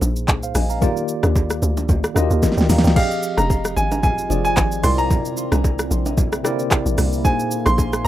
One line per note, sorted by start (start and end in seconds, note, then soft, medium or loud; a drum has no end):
0.00 0.30 A#1 medium
0.00 0.83 A#2 medium
0.00 0.81 A#3 medium
0.00 0.84 D#4 medium
0.00 0.83 G#4 medium
0.00 0.44 C5 loud
0.00 low bongo medium
0.00 shaker loud
0.16 shaker medium
0.28 0.54 C2 loud
0.28 kick loud
0.28 clap medium
0.28 high bongo medium
0.28 shaker medium
0.43 0.55 C5 medium
0.43 0.55 F5 medium
0.43 shaker medium
0.55 0.81 A#1 loud
0.55 0.70 D#5 medium
0.55 0.69 G#5 medium
0.55 cross-stick medium
0.55 open hi-hat medium
0.55 low conga medium
0.55 shaker medium
0.70 0.96 F5 medium
0.70 0.95 A#5 medium
0.70 shaker medium
0.81 1.68 D#3 medium
0.81 1.68 A#3 medium
0.81 1.68 F4 medium
0.81 1.68 G4 medium
0.81 1.69 D5 loud
0.81 kick loud
0.81 low conga medium
0.81 shaker medium
0.97 shaker medium
1.08 shaker loud
1.23 1.61 D#2 loud
1.23 cross-stick loud
1.23 low bongo medium
1.23 shaker medium
1.36 kick loud
1.36 high bongo medium
1.36 shaker medium
1.50 cross-stick medium
1.50 shaker medium
1.62 1.88 D2 loud
1.62 low bongo soft
1.62 shaker medium
1.77 low bongo medium
1.77 shaker medium
1.89 2.03 D2 medium
1.89 kick loud
1.89 low conga medium
1.89 shaker medium
2.04 cross-stick loud
2.04 shaker medium
2.15 2.30 D#2 loud
2.15 2.81 D#3 loud
2.15 2.81 A#3 medium
2.15 2.81 F4 medium
2.15 2.23 F#4 medium
2.15 2.43 D#5 loud
2.15 cross-stick medium
2.15 low bongo medium
2.15 shaker loud
2.23 2.85 G4 medium
2.31 2.42 D#2 medium
2.31 shaker medium
2.43 kick loud
2.43 snare medium
2.43 high bongo medium
2.43 shaker medium
2.52 snare medium
2.57 2.69 D2 loud
2.57 2.69 D5 medium
2.57 2.69 G5 medium
2.57 snare medium
2.57 shaker medium
2.69 2.84 D#2 medium
2.69 2.84 F5 medium
2.69 2.83 A#5 medium
2.69 snare medium
2.69 open hi-hat medium
2.69 low conga medium
2.69 shaker loud
2.78 snare loud
2.84 2.96 D2 medium
2.84 3.10 D5 medium
2.84 3.10 G5 medium
2.84 snare loud
2.84 shaker medium
2.95 4.82 D#3 medium
2.95 3.82 F3 medium
2.95 4.82 G#3 medium
2.95 3.82 C4 medium
2.95 7.21 C4 medium
2.95 4.82 F4 loud
2.95 3.82 G4 medium
2.95 3.83 G#4 medium
2.95 3.83 D#5 medium
2.95 3.39 F5 medium
2.95 kick loud
2.95 crash medium
2.95 low conga medium
3.11 shaker medium
3.23 shaker loud
3.37 3.75 F1 loud
3.37 3.74 A#5 medium
3.37 cross-stick loud
3.37 low bongo medium
3.37 shaker medium
3.50 kick medium
3.50 high bongo medium
3.50 shaker medium
3.65 cross-stick medium
3.65 shaker medium
3.76 4.28 G#1 medium
3.76 4.01 G#5 loud
3.76 low bongo medium
3.76 shaker medium
3.92 low bongo medium
3.92 shaker medium
4.03 4.42 G#5 loud
4.03 kick loud
4.03 low conga medium
4.03 shaker medium
4.18 shaker medium
4.29 4.56 F1 loud
4.29 4.83 F3 medium
4.29 4.82 C4 medium
4.29 4.84 F4 medium
4.29 4.84 G#4 medium
4.29 4.84 D5 medium
4.29 low bongo medium
4.29 shaker loud
4.45 4.81 G#5 loud
4.45 shaker medium
4.57 4.83 G#1 medium
4.57 kick loud
4.57 clap loud
4.57 high bongo medium
4.57 shaker medium
4.72 shaker medium
4.83 5.10 C2 loud
4.83 5.69 C3 medium
4.83 7.23 D3 medium
4.83 8.08 A#3 medium
4.83 5.70 C4 medium
4.83 5.70 E4 medium
4.83 7.23 E4 medium
4.83 5.70 A#4 medium
4.83 5.71 D5 medium
4.83 4.97 C6 loud
4.83 cross-stick medium
4.83 open hi-hat medium
4.83 low conga medium
4.83 shaker medium
4.98 6.01 A#5 loud
4.98 shaker medium
5.11 kick loud
5.11 low conga medium
5.11 shaker medium
5.25 shaker medium
5.37 shaker loud
5.52 5.90 C2 medium
5.52 cross-stick loud
5.52 low bongo medium
5.52 shaker medium
5.64 kick loud
5.64 high bongo medium
5.64 shaker medium
5.79 cross-stick loud
5.79 shaker medium
5.91 6.43 A#1 medium
5.91 low bongo medium
5.91 shaker medium
6.06 low bongo medium
6.06 shaker medium
6.18 kick loud
6.18 low conga medium
6.18 shaker medium
6.32 cross-stick loud
6.32 shaker medium
6.43 7.09 C3 medium
6.43 7.09 C4 medium
6.43 7.10 E4 medium
6.43 7.10 A#4 medium
6.43 7.10 D5 loud
6.43 cross-stick loud
6.43 low bongo medium
6.43 shaker loud
6.59 shaker medium
6.71 kick loud
6.71 clap medium
6.71 high bongo medium
6.71 shaker medium
6.86 6.97 A#1 medium
6.86 shaker medium
6.98 7.24 C2 medium
6.98 cross-stick medium
6.98 open hi-hat medium
6.98 low conga medium
6.98 shaker medium
7.13 shaker medium
7.23 8.08 A#2 medium
7.23 8.08 D#3 medium
7.23 8.08 G#3 medium
7.23 8.08 A#3 medium
7.23 8.08 D#4 medium
7.23 8.08 F4 medium
7.23 8.08 G#4 medium
7.23 8.08 C5 medium
7.23 7.67 G#5 loud
7.23 kick loud
7.23 low conga medium
7.23 shaker medium
7.40 shaker medium
7.51 shaker loud
7.66 8.04 A#1 loud
7.66 8.06 C6 loud
7.66 cross-stick loud
7.66 low bongo medium
7.66 shaker medium
7.78 kick loud
7.78 high bongo medium
7.78 shaker medium
7.93 cross-stick medium
7.93 shaker medium
8.05 8.08 A#5 loud
8.05 low bongo soft